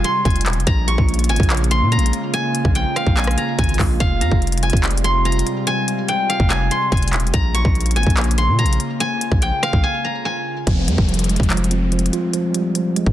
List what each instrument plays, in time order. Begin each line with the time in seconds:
Already playing: ambient pad C3 G3 G#3 F4, guzheng F5 G#5
0.04 guzheng C6, closed hi-hat
0.25 808-style bass F1, guzheng G#5, kick, closed hi-hat
0.30 closed hi-hat
0.36 closed hi-hat
0.41 closed hi-hat
0.46 808-style bass D#1, clap, closed hi-hat
0.53 808-style bass F1, closed hi-hat
0.60 closed hi-hat
0.67 808-style bass A#1, ambient pad C#3 G#3 A#3 F4, guzheng A#5, kick, closed hi-hat
0.88 guzheng C#6, closed hi-hat
0.98 808-style bass A#1, kick
1.09 closed hi-hat
1.14 closed hi-hat
1.19 closed hi-hat
1.24 closed hi-hat
1.29 808-style bass G#1, guzheng G#5, closed hi-hat
1.36 808-style bass A#1, kick, closed hi-hat
1.43 closed hi-hat
1.50 clap, closed hi-hat
1.57 closed hi-hat
1.64 closed hi-hat
1.71 guzheng C6, closed hi-hat
1.82 808-style bass A#2
1.92 guzheng A#5, closed hi-hat
1.97 808-style bass A#1, closed hi-hat
2.06 closed hi-hat
2.13 closed hi-hat
2.34 guzheng G#5, closed hi-hat
2.55 closed hi-hat
2.65 808-style bass A#1, kick
2.75 guzheng G5, closed hi-hat
2.96 guzheng F5, cross-stick, closed hi-hat
3.07 808-style bass A#1, kick
3.17 guzheng G#5, clap, closed hi-hat
3.24 cross-stick, closed hi-hat
3.31 closed hi-hat
3.38 guzheng A#5, closed hi-hat
3.59 808-style bass G#1, guzheng G#5, kick, closed hi-hat
3.64 closed hi-hat
3.69 closed hi-hat
3.74 closed hi-hat
3.79 808-style bass A#1, kick, clap, open hi-hat
4.00 808-style bass F1, ambient pad C3 G3, guzheng F5, kick, closed hi-hat
4.21 808-style bass F2, guzheng A#5, closed hi-hat
4.32 808-style bass F1, kick
4.42 closed hi-hat
4.47 closed hi-hat
4.52 closed hi-hat
4.58 closed hi-hat
4.63 guzheng G#5, closed hi-hat
4.70 808-style bass F1, kick, closed hi-hat
4.77 closed hi-hat
4.84 clap, closed hi-hat
4.91 closed hi-hat
4.97 closed hi-hat
5.04 guzheng C6, closed hi-hat
5.25 guzheng A#5, closed hi-hat
5.32 closed hi-hat
5.39 closed hi-hat
5.47 closed hi-hat
5.67 guzheng G#5, closed hi-hat
5.88 closed hi-hat
6.09 guzheng G5, closed hi-hat
6.29 guzheng F5, closed hi-hat
6.40 808-style bass F1, kick
6.50 guzheng G#5, clap, closed hi-hat
6.71 guzheng C6, closed hi-hat
6.92 808-style bass F1, guzheng G#5, kick, closed hi-hat
6.97 closed hi-hat
7.02 closed hi-hat
7.08 closed hi-hat
7.13 808-style bass D#1, clap, closed hi-hat
7.20 808-style bass F1, closed hi-hat
7.27 closed hi-hat
7.34 808-style bass A#1, ambient pad C#3 A#3, guzheng A#5, kick, closed hi-hat
7.54 guzheng C#6, closed hi-hat
7.65 808-style bass A#1, kick
7.75 closed hi-hat
7.81 closed hi-hat
7.86 closed hi-hat
7.91 closed hi-hat
7.96 808-style bass G#1, guzheng G#5, closed hi-hat
8.03 808-style bass A#1, kick, closed hi-hat
8.10 closed hi-hat
8.17 clap, closed hi-hat
8.24 closed hi-hat
8.31 closed hi-hat
8.38 guzheng C6, closed hi-hat
8.48 808-style bass A#2
8.59 guzheng A#5, closed hi-hat
8.64 808-style bass A#1, closed hi-hat
8.73 closed hi-hat
8.80 closed hi-hat
9.00 guzheng G#5, closed hi-hat
9.21 closed hi-hat
9.32 808-style bass A#1, kick
9.42 guzheng G5, closed hi-hat
9.63 guzheng F5, cross-stick, closed hi-hat
9.73 808-style bass A#1, kick
9.84 guzheng G#5
10.05 guzheng A#5
10.25 guzheng G#5
10.67 808-style bass F1, tine electric piano F3, kick, closed hi-hat, downlifter
10.88 808-style bass F2, tine electric piano G3, closed hi-hat
10.98 808-style bass F1, kick
11.09 tine electric piano F3, closed hi-hat
11.14 closed hi-hat
11.19 closed hi-hat
11.24 closed hi-hat
11.29 tine electric piano G#3, closed hi-hat
11.36 808-style bass F1, kick, closed hi-hat
11.43 closed hi-hat
11.50 tine electric piano F3, clap, closed hi-hat
11.57 closed hi-hat
11.64 closed hi-hat
11.71 tine electric piano C4, closed hi-hat
11.92 tine electric piano F3, closed hi-hat
11.99 closed hi-hat
12.06 closed hi-hat
12.13 tine electric piano F4, closed hi-hat
12.33 tine electric piano F3, closed hi-hat
12.54 tine electric piano G3, closed hi-hat
12.75 tine electric piano F3, closed hi-hat
12.96 tine electric piano G#3, closed hi-hat
13.06 808-style bass F1, kick